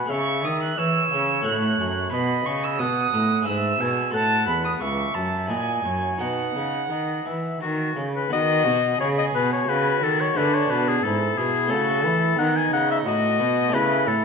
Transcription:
Already playing: B2 F#5
0.06 G#3 G#4 C#5
0.10 C#3 E5 C#6
0.44 D#3 D#6
0.63 F#6
0.78 E3 C#5 E6
1.12 C#3
1.41 A3 F#4 C#5
1.45 A2 F#6
1.79 F#2
2.10 B2 F#4 B4 D#5 B5
2.45 C#3 C#6
2.64 E6
2.79 B2 F#5 D#6
3.13 A2
3.42 G#2 G#3 E4 B4 E5
3.47 E6
3.80 B2 G#5
4.10 A2 F#4 A4 F#5 A5
4.47 E2 B5
4.65 D#6
4.81 C#2 E5 C#6
5.15 F#2 A5
5.46 A#2 E4 F#4 D#5 G#5
5.84 F#2 C#5
6.18 B2 D#4 F#4 D#5 F#5
6.56 C#3
6.90 D#3 D#5
7.26 E3 E5
7.61 D#3 F#4
7.96 C#3
8.16 B4
8.29 D#3 B3 F#4 D#5
8.66 B2
9.00 C#3 G#4 C#5
9.18 D#5
9.35 B2 B4
9.53 C#5
9.68 C#3 F#4 B4
10.03 D#3 A4
10.20 C#5
10.34 D3 G#3 B3 D4 E4 B4
10.38 D3
10.54 C#5
10.70 B2 B4
10.88 G#4
11.04 G#2 E4 A4
11.38 B2 G#4
11.67 A3 C#4 E4 A4
11.71 C#3 F#4
12.05 E3 E4
12.36 D#3 B3 D#4 F#5
12.57 G#5
12.72 C#3 F#5
12.91 E5
13.06 A2 F#4 D#5
13.40 B2
13.68 A3 C#4 E4
13.73 C#3 E4 B4
14.06 A2 A4

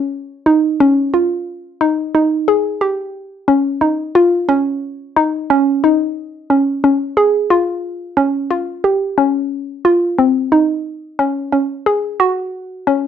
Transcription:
Already playing: C#4
0.46 D#4
0.80 C#4
1.14 F4
1.81 D#4
2.15 D#4
2.48 G#4
2.81 G4
3.48 C#4
3.81 D#4
4.15 F4
4.49 C#4
5.16 D#4
5.50 C#4
5.84 D#4
6.50 C#4
6.84 C#4
7.17 G#4
7.50 F4
8.17 C#4
8.51 F4
8.84 G4
9.18 C#4
9.85 F4
10.19 C4
10.52 D#4
11.19 C#4
11.52 C#4
11.86 G#4
12.20 F#4
12.87 C#4

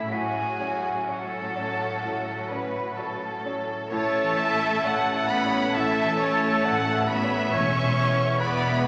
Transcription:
Already playing: E3 A3 C#4 E4 A4 E5
0.11 A2 F#3 C#4 F#4 G#4 G#5
0.60 C#4 C#5
1.07 F#4 A4 C#5 F#5
1.55 C#4 C#5
2.03 A2
2.51 C#4 B4 C#5
2.98 F#4 A4 C#5
3.45 C#4 C#5
3.92 A1 A2 A3 C#4 A4 C#5 A5
4.23 E3
4.37 C#4 E4 E5
4.54 E4
4.83 A1 C#5 F#5
5.15 E5
5.28 B3 C#4 E4 B4 B5
5.45 C#5
5.73 A1 A2 A3 A4 E5 A5
6.04 E3
6.19 C#4 E4 C#5
6.34 E4
6.63 A1 C#5 F#5
6.94 E5
7.08 B3 C#4 E4 B4 E5 B5
7.24 C#5
7.52 E1 E2 G#3 B3 C#4 E4 C#5 C#6
7.82 B2
7.98 G#3 E4
8.11 E4
8.39 E1 B3 B4 D5 B5
8.69 E5

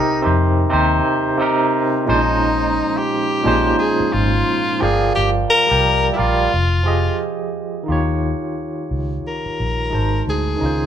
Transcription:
Already playing: C3 C4 D#4 G4 A#4
0.21 C3 C4 D#4 G4
0.26 F2 C5
0.69 C3 C4 D#4 G4
0.73 D#2 C5
1.38 C3 C4 D#4 G4
1.42 A#4
2.06 A#1 A#2 F3 G#3 C#4 D#4 C5
2.97 G4
3.43 A#1 A#2 F3 G#3 C#4 D#4 C5
3.79 G#4
4.00 muted fingered electric bass stroke
4.12 G#1 F4
4.80 G1 F3 G#4 A#4 D5 G5
4.84 F5
5.15 G1 G4
5.50 A#4
5.67 G3 G4 A#4 D5
5.71 C2 G5
6.13 G3 E4 G4
6.17 A#1 F4 A#4 D5 F5
6.54 F1
6.83 F3 F4 G4 G#4
6.87 D#5
7.83 D#3 D#4
7.88 D#2 F4 G4 C#5
8.91 C#2
9.27 A#4
9.46 muted fingered electric bass stroke
9.60 A#1
9.90 G#1 G#3 D#4 F#4 A5
9.95 C5
10.27 D2 G#4
10.56 D#3 C#4
10.61 C#2 D#4 F4
10.65 C5

